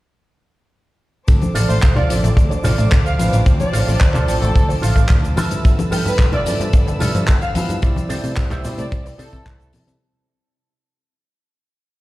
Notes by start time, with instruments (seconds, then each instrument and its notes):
1.28 picked electric bass D2, synth arpeggio sound C3, tine electric piano F3 C4 D4 A4, string section C5 A5 D6, kick, closed hi-hat, tambourine, shaker
1.41 synth arpeggio sound D3, closed hi-hat, high conga, shaker
1.54 picked electric bass A1, synth arpeggio sound F3, clean electric guitar F4 A4 C5 D5, open hi-hat, tambourine, shaker
1.69 picked electric bass A1, synth arpeggio sound A3, violin section C5, open hi-hat, tambourine, shaker
1.83 picked electric bass D2, synth arpeggio sound C3, kick, clap, closed hi-hat, tambourine, shaker
1.95 synth arpeggio sound D3, clean electric guitar F4 A4 C5 F5, violin section D5, closed hi-hat, low conga
2.09 picked electric bass A1, tine electric piano F3 C4 D4 A4, synth arpeggio sound F3, violin section D5, open hi-hat, tambourine, shaker
2.23 picked electric bass A1, synth arpeggio sound A3, closed hi-hat, tambourine, shaker
2.36 picked electric bass D2, synth arpeggio sound C3, muted clean electric guitar stroke, kick, closed hi-hat, tambourine, shaker
2.50 synth arpeggio sound D3, muted clean electric guitar stroke, closed hi-hat, shaker
2.63 picked electric bass A1, synth arpeggio sound F3, clean electric guitar F4 A4 C5 D5, open hi-hat, tambourine, low conga, shaker
2.78 picked electric bass A1, synth arpeggio sound A3, closed hi-hat, tambourine, shaker
2.92 picked electric bass D2, synth arpeggio sound C3, kick, clap, closed hi-hat, tambourine, shaker
3.06 synth arpeggio sound D3, violin section F5, closed hi-hat, shaker
3.19 picked electric bass A1, tine electric piano F3 C4 D4 B4, synth arpeggio sound F3, violin section F5, open hi-hat, tambourine, high conga, shaker
3.32 picked electric bass A1, synth arpeggio sound A3, muted clean electric guitar stroke, closed hi-hat, tambourine, shaker
3.46 picked electric bass D2, synth arpeggio sound C3, tine electric piano F3 C4 D4 C5, kick, closed hi-hat, tambourine, shaker
3.60 synth arpeggio sound D3, violin section D5, closed hi-hat, high conga, shaker
3.73 picked electric bass A1, synth arpeggio sound F3, clean electric guitar F4 A4 C5 F5, open hi-hat, tambourine, shaker
3.87 picked electric bass A1, synth arpeggio sound A3, violin section D5, open hi-hat, tambourine, shaker
4.01 picked electric bass D2, synth arpeggio sound C3, kick, clap, closed hi-hat, tambourine, shaker
4.14 synth arpeggio sound D3, clean electric guitar F4 A4 C5 D5, violin section A4, clap, closed hi-hat, low conga, shaker
4.27 picked electric bass A1, tine electric piano F3 C4 D4 C5, synth arpeggio sound F3, open hi-hat, tambourine, shaker
4.42 picked electric bass A1, synth arpeggio sound A3, closed hi-hat, tambourine, shaker
4.55 picked electric bass D2, synth arpeggio sound C3, muted clean electric guitar stroke, kick, closed hi-hat, tambourine, shaker
4.68 synth arpeggio sound D3, muted clean electric guitar stroke, open hi-hat, shaker
4.82 picked electric bass A1, synth arpeggio sound F3, clean electric guitar F4 A4 C5 F5, open hi-hat, tambourine, shaker
4.96 picked electric bass A1, synth arpeggio sound A3, kick, closed hi-hat, tambourine, shaker
5.09 picked electric bass D2, synth arpeggio sound C3, kick, clap, closed hi-hat, tambourine, shaker
5.24 synth arpeggio sound D3, closed hi-hat, shaker
5.36 picked electric bass G2, synth arpeggio sound E3, clean electric guitar F4 A4 B4 E5, string section B4 E6, open hi-hat, tambourine, high conga, shaker
5.51 picked electric bass G2, synth arpeggio sound F3, closed hi-hat, tambourine, shaker
5.64 picked electric bass G1, synth arpeggio sound B2, tine electric piano F3 B3 A4 E5, kick, closed hi-hat, tambourine, shaker
5.79 synth arpeggio sound D3, closed hi-hat, high conga, shaker
5.91 picked electric bass G2, synth arpeggio sound E3, clean electric guitar F4 A4 B4 G5, open hi-hat, tambourine, shaker
6.05 picked electric bass G2, synth arpeggio sound F3, violin section B4, open hi-hat, tambourine, shaker
6.19 picked electric bass G1, synth arpeggio sound B2, kick, clap, tambourine, shaker
6.32 synth arpeggio sound D3, clean electric guitar F4 A4 B4 E5, violin section D5, closed hi-hat, low conga
6.46 picked electric bass G2, synth arpeggio sound E3, tine electric piano F3 B3 A4 E5, violin section D5, open hi-hat, tambourine, shaker
6.60 picked electric bass G2, synth arpeggio sound F3, closed hi-hat, tambourine, shaker
6.73 picked electric bass G1, synth arpeggio sound B2, muted clean electric guitar stroke, kick, closed hi-hat, tambourine, shaker
6.87 synth arpeggio sound D3, muted clean electric guitar stroke, closed hi-hat, shaker
7.00 picked electric bass G2, synth arpeggio sound E3, clean electric guitar F4 A4 B4 E5, open hi-hat, tambourine, low conga, shaker
7.14 picked electric bass G2, synth arpeggio sound F3, closed hi-hat, tambourine, shaker
7.28 picked electric bass G1, synth arpeggio sound B2, kick, clap, closed hi-hat, tambourine, shaker
7.42 synth arpeggio sound D3, violin section F5, closed hi-hat, shaker
7.55 picked electric bass G2, synth arpeggio sound E3, tine electric piano F3 B3 E4 B4, violin section F5, open hi-hat, tambourine, high conga, shaker
7.68 picked electric bass G2, synth arpeggio sound F3, muted clean electric guitar stroke, closed hi-hat, tambourine, shaker
7.82 picked electric bass C2, synth arpeggio sound C3, tine electric piano G3 C4 E4 D5, string section C5 G5, kick, closed hi-hat, tambourine, shaker
7.96 synth arpeggio sound E3, closed hi-hat, high conga, shaker
8.09 picked electric bass C3, synth arpeggio sound G3, clean electric guitar G4 A4 C5 E5, open hi-hat, tambourine, shaker
8.24 picked electric bass C3, synth arpeggio sound A3, open hi-hat, tambourine, shaker
8.37 picked electric bass C2, synth arpeggio sound C3, kick, clap, tambourine, shaker
8.50 synth arpeggio sound E3, clean electric guitar G4 A4 C5 E5, clap, closed hi-hat, low conga, shaker
8.64 picked electric bass C3, tine electric piano G3 C4 E4 D5, synth arpeggio sound G3, open hi-hat, tambourine, shaker
8.78 picked electric bass C3, synth arpeggio sound A3, violin section D5, closed hi-hat, tambourine, shaker
8.91 picked electric bass C2, synth arpeggio sound C3, violin section D5, muted clean electric guitar stroke, kick, closed hi-hat, tambourine, shaker
9.05 synth arpeggio sound E3, muted clean electric guitar stroke, open hi-hat, shaker
9.18 picked electric bass C3, synth arpeggio sound C3, clean electric guitar G4 A4 C5 E5, violin section A4, open hi-hat, tambourine, shaker
9.32 picked electric bass C3, synth arpeggio sound E3, tine electric piano G3 C4 E4 A4, kick, closed hi-hat, tambourine, shaker
9.46 picked electric bass C2, synth arpeggio sound G3, kick, clap, closed hi-hat, tambourine, shaker
9.60 synth arpeggio sound A3, closed hi-hat, shaker
9.73 picked electric bass C3, synth arpeggio sound C3, open hi-hat, tambourine, high conga, shaker
9.87 picked electric bass C3, synth arpeggio sound C3, muted clean electric guitar stroke, closed hi-hat, tambourine, shaker